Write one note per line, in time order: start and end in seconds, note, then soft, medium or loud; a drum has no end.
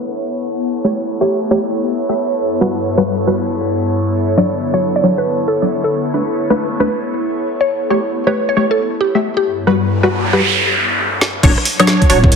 0.00 10.55 B3 medium
0.00 10.55 E4 medium
0.00 10.55 A4 medium
0.00 10.55 C#5 medium
0.84 0.93 A3 medium
0.84 0.93 G4 medium
0.84 0.93 C#5 medium
1.21 1.49 A3 medium
1.21 1.49 G4 medium
1.21 1.49 C#5 medium
1.51 1.59 A3 medium
1.51 1.59 G4 medium
1.51 1.59 C#5 loud
2.09 2.14 A3 medium
2.09 2.14 G4 medium
2.09 2.14 E5 medium
2.39 4.37 G2 medium
2.61 2.70 G3 medium
2.61 2.70 F#4 medium
2.61 2.70 B4 medium
2.98 3.02 G3 loud
2.98 3.02 F#4 medium
2.98 3.02 B4 loud
3.27 3.36 G3 medium
3.27 3.36 F#4 medium
3.27 3.36 B4 medium
4.37 6.14 D3 medium
4.37 4.46 F#3 medium
4.37 4.46 D4 medium
4.37 4.46 C#5 medium
4.37 4.55 D5 medium
4.74 5.02 F#3 medium
4.74 5.02 D4 medium
4.74 5.02 C#5 loud
4.74 4.81 C#5 medium
4.96 5.03 D5 medium
5.04 5.12 F#3 medium
5.04 5.12 D4 medium
5.04 5.12 C#5 loud
5.18 5.32 B4 medium
5.48 5.66 A4 medium
5.62 5.67 F#3 medium
5.62 5.67 D4 medium
5.62 5.67 D5 medium
5.84 5.98 A4 medium
6.14 6.22 A3 medium
6.14 6.22 D4 medium
6.14 6.22 B4 medium
6.50 6.55 A3 loud
6.50 6.55 D4 medium
6.50 6.55 B4 loud
6.80 6.88 A3 medium
6.80 6.88 D4 medium
6.80 6.88 B4 medium
6.80 6.98 B4 medium
7.61 7.75 C#5 loud
7.90 7.99 A3 medium
7.90 7.99 G4 medium
7.90 7.99 C#5 medium
7.90 8.08 C#5 loud
8.27 8.55 A3 medium
8.27 8.55 G4 medium
8.27 8.34 B4 medium
8.27 8.55 C#5 loud
8.49 8.56 C#5 medium
8.57 8.65 A3 medium
8.57 8.65 G4 medium
8.57 8.65 C#5 loud
8.71 8.85 A4 medium
9.01 9.18 G4 medium
9.15 9.20 A3 medium
9.15 9.20 G4 medium
9.15 9.20 E5 medium
9.37 9.51 G4 medium
9.45 10.55 G2 medium
9.67 9.75 G3 medium
9.67 9.75 F#4 medium
9.67 9.75 B4 medium
9.67 noise sweep medium
10.03 10.08 G3 medium
10.03 10.08 F#4 medium
10.03 10.08 B4 loud
10.33 10.42 G3 medium
10.33 10.42 F#4 medium
10.33 10.51 G4 medium
10.33 10.42 B4 medium
11.21 snare medium
11.43 11.56 D1 loud
11.43 11.52 F#3 medium
11.43 11.52 D4 medium
11.43 11.52 C#5 medium
11.43 kick loud
11.43 closed hi-hat medium
11.43 crash loud
11.58 cross-stick medium
11.65 open hi-hat loud
11.80 12.08 F#3 medium
11.80 12.08 D4 medium
11.80 12.08 C#5 loud
11.80 cross-stick medium
11.80 closed hi-hat medium
11.80 high woodblock medium
11.87 snare loud
12.02 kick medium
12.02 closed hi-hat soft
12.09 12.36 D1 medium
12.09 12.18 F#3 medium
12.09 12.18 D4 medium
12.09 12.18 C#5 loud
12.09 open hi-hat loud
12.24 kick loud
12.24 cross-stick soft
12.32 closed hi-hat medium